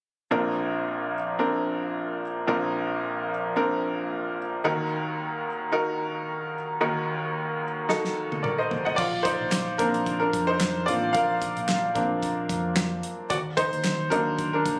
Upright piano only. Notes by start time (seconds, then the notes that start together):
0.31 A#1 A#2 C4 D4 A#4
1.39 C4 D4 A#4
2.47 A#1 A#2 C4 D4 A#4
3.56 C4 D4 A#4
4.64 D#2 D#3 D#4 F#4 A#4
5.72 D#4 F#4 A#4
6.81 D#2 D#3 D#4 F#4 A#4
7.89 D#4 F#4 A4
8.43 A#4 D5
8.58 C5 D#5
8.85 D#5 F#5
8.96 F4 D5
9.23 D#4 C5
9.78 A#3 C4 D4 A#4
10.20 D4 A#4
10.47 D#4 C5
10.86 A#3 C4 D4 F4 D5
11.13 A#4 F5
11.95 A#3 C4 D4
13.30 F#4 D5
13.57 D#4 C5
14.10 F#3 A#3 D4 D#4 A#4
14.53 D4 A#4